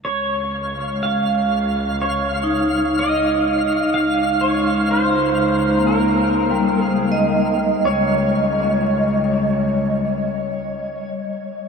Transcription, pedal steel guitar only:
0.05 1.02 C#5 medium
1.03 2.03 F5 medium
2.02 3.00 C#5 medium
2.99 3.94 D#5 medium
3.94 4.43 F5 medium
4.41 4.90 C#5 medium
4.91 5.90 C5 medium
5.87 6.83 A#4 medium
6.83 7.30 G#4 medium
7.85 11.10 C#5 medium

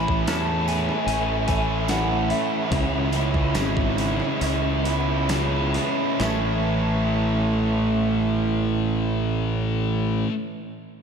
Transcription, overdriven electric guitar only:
0.00 0.27 A2 loud
0.00 0.27 E3 loud
0.00 0.27 A3 medium
0.00 0.29 C#4 medium
0.00 0.30 E4 medium
0.27 1.88 E3 medium
0.27 1.49 A3 medium
0.27 1.49 C#4 medium
0.27 1.47 E4 medium
1.48 1.88 A3 medium
1.48 1.90 C#4 medium
1.48 1.91 E4 medium
1.89 2.72 E3 medium
1.89 2.31 A3 medium
1.89 2.30 C#4 medium
1.89 2.29 E4 medium
2.29 2.70 A3 medium
2.29 2.73 C#4 medium
2.29 2.74 E4 medium
2.71 3.55 C#3 loud
2.71 3.53 E3 loud
2.71 3.14 G#3 loud
2.71 3.13 C#4 loud
2.71 3.12 E4 loud
3.13 3.55 G#3 medium
3.13 3.55 C#4 medium
3.13 3.56 E4 medium
3.54 5.28 E3 medium
3.54 4.86 G#3 medium
3.54 4.84 C#4 medium
3.54 4.83 E4 medium
4.84 5.30 G#3 medium
4.84 5.31 C#4 medium
4.84 5.32 E4 medium
5.30 6.18 E3 medium
5.30 5.76 G#3 medium
5.30 5.75 C#4 medium
5.30 5.73 E4 medium
5.75 6.19 G#3 medium
5.75 6.19 C#4 medium
5.75 6.18 E4 medium
6.21 10.28 A2 loud
6.21 10.29 E3 loud
6.21 10.30 A3 medium
6.21 10.31 C#4 loud
6.25 10.32 A4 loud

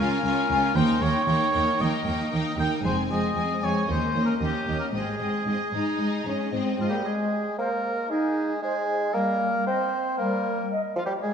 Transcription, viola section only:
0.00 0.22 C#4 soft
0.23 0.48 C#4 soft
0.49 0.75 C#4 soft
0.76 1.00 A#3 medium
1.02 1.26 A#3 soft
1.27 1.52 A#3 soft
1.53 1.79 A#3 soft
1.80 2.04 A#3 soft
2.06 2.30 A#3 soft
2.32 2.57 A#3 soft
2.58 2.83 A#3 soft
2.84 3.08 G#3 soft
3.10 3.35 G#3 soft
3.36 3.61 G#3 soft
3.62 3.88 G#3 soft
3.88 4.14 A#3 soft
4.15 4.40 A#3 soft
4.41 4.66 A#3 soft
4.67 4.93 A#3 soft
4.93 5.19 G#3 soft
5.20 5.45 G#3 soft
5.46 5.72 G#3 soft
5.73 5.98 G#3 soft
6.00 6.25 G#3 soft
6.26 6.52 G#3 soft
6.53 6.79 G#3 soft
6.80 7.05 G#3 soft

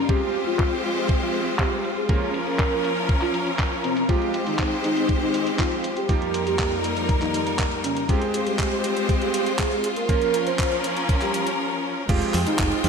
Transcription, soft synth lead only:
0.09 0.37 G4 loud
0.47 0.75 F4 loud
0.84 1.12 F4 medium
1.22 1.50 F4 medium
1.59 1.87 G4 medium
1.97 2.34 G#4 medium
2.47 2.75 A#4 medium
3.22 3.50 F4 medium
3.84 4.03 C4 medium
4.09 4.38 F4 loud
4.47 4.75 D#4 medium
4.84 5.13 D#4 medium
5.22 5.50 D#4 medium
5.59 5.88 F4 medium
5.97 6.34 G4 medium
6.47 6.75 G4 loud
7.21 7.50 D#4 medium
7.84 8.03 C#4 medium
8.09 8.37 G#4 loud
8.46 8.75 G4 medium
8.84 9.12 G4 loud
9.22 9.50 G4 loud
9.59 9.87 G#4 loud
9.96 10.34 A#4 medium
10.47 10.75 C5 loud
11.22 11.50 G4 loud
12.09 12.38 F4 loud
12.47 12.75 D#4 loud
12.84 12.89 D#4 loud

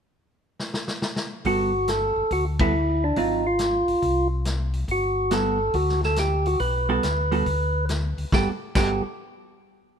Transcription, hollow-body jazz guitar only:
1.46 1.71 G3 soft
1.46 1.71 B3 soft
1.46 1.71 F#4 soft
1.46 1.72 A4 medium
2.60 2.73 G3 soft
2.60 2.73 B3 soft
2.60 2.73 F#4 medium
2.60 2.73 A4 medium
3.17 3.42 F#3 soft
3.17 3.43 C4 soft
3.17 3.43 F4 soft
5.31 5.57 G3 medium
5.31 5.57 B3 medium
5.31 5.57 F#4 medium
5.31 5.58 A4 medium
6.89 7.02 G3 medium
6.89 7.02 B3 medium
6.89 7.02 F#4 medium
6.89 7.02 A4 medium
7.32 7.45 G3 medium
7.32 7.45 B3 medium
7.32 7.45 F#4 medium
7.32 7.45 A4 medium
8.33 8.50 G3 medium
8.33 8.50 B3 medium
8.33 8.50 F#4 medium
8.33 8.50 A4 medium
8.76 9.01 G3 soft
8.76 9.02 B3 medium
8.76 9.02 F#4 medium
8.76 9.02 A4 medium

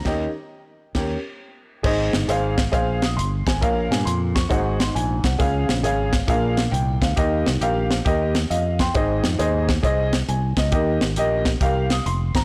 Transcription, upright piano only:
0.05 0.26 D#3 loud
0.05 0.25 C#4 medium
0.05 0.26 G4 loud
0.05 0.26 A#4 medium
0.05 0.26 D#5 medium
0.95 1.15 C#4 medium
0.95 1.15 G4 medium
0.95 1.15 A#4 medium
1.83 2.54 G#2 medium
1.83 2.13 G#4 medium
1.83 2.14 C5 medium
1.83 2.14 D#5 loud
2.28 2.58 G#4 medium
2.28 2.59 C5 medium
2.28 2.59 F5 loud
2.72 3.02 G#4 medium
2.72 3.02 C5 medium
2.72 3.03 F5 loud
3.03 3.17 D#6 medium
3.17 3.45 C6 medium
3.47 3.89 G#5 medium
3.61 4.32 A#2 medium
3.61 3.91 A#4 loud
3.61 3.92 C#5 medium
3.61 3.92 F5 loud
3.91 4.06 G#5 medium
4.05 4.34 C6 medium
4.35 4.78 C#6 medium
4.49 5.20 G#2 medium
4.49 4.80 D#4 loud
4.49 4.80 F#4 medium
4.49 4.80 G#4 medium
4.49 4.80 C5 medium
4.49 4.80 F#5 loud
4.80 4.95 C6 medium
4.95 5.23 G#5 medium
5.25 5.67 F#5 medium
5.39 6.10 C#3 medium
5.39 5.69 G#4 loud
5.39 5.69 C#5 medium
5.39 5.70 F5 loud
5.83 6.13 G#4 loud
5.83 6.14 C#5 medium
5.83 6.14 F5 medium
6.27 6.98 A#2 medium
6.27 6.58 D4 medium
6.27 6.58 F4 medium
6.27 6.58 G#4 medium
6.27 6.58 A#4 medium
6.27 6.59 F5 loud
6.72 7.00 G5 medium
7.02 7.44 F5 medium
7.16 7.87 D#3 medium
7.16 7.46 G4 medium
7.16 7.47 A#4 medium
7.16 7.47 D#5 loud
7.61 7.91 G4 medium
7.61 7.91 A#4 medium
7.61 7.92 F5 loud
8.05 8.35 G4 loud
8.05 8.35 A#4 medium
8.05 8.36 D#5 loud
8.50 8.78 D#5 medium
8.50 8.78 F5 medium
8.80 9.22 G5 medium
8.80 8.94 C6 medium
8.94 9.65 G#2 medium
8.94 9.24 G#4 medium
8.94 9.25 C5 medium
8.94 9.25 D#5 loud
9.39 9.69 G#4 medium
9.39 9.69 C5 medium
9.39 9.70 D#5 medium
9.83 10.13 G#4 medium
9.83 10.13 C5 medium
9.83 10.14 D#5 loud
10.29 10.56 G#5 medium
10.58 10.72 D#5 medium
10.72 11.42 D#3 medium
10.72 11.02 G4 medium
10.72 11.02 A#4 medium
10.72 11.03 D#5 loud
11.17 11.47 G4 medium
11.17 11.47 A#4 medium
11.17 11.48 D#5 loud
11.61 11.91 G4 medium
11.61 11.91 A#4 medium
11.61 11.92 F5 loud
11.91 12.05 D#6 medium
12.06 12.34 C6 medium
12.35 12.44 A#5 medium

